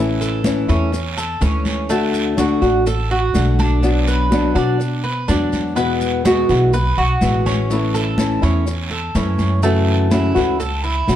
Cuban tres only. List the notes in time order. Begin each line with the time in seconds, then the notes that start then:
0.21 A4
0.69 C#4
1.17 A4
1.42 C#4
1.90 A3
2.38 F#4
2.87 A4
3.11 F#4
3.60 D4
4.07 B4
4.56 D4
5.04 B4
5.28 D4
5.76 B3
6.25 F#4
6.74 B4
6.98 F#4
7.46 C#4
7.94 A4
8.43 C#4
8.91 A4
9.15 C#4
9.63 A3
10.11 E4
10.60 A4
10.84 E4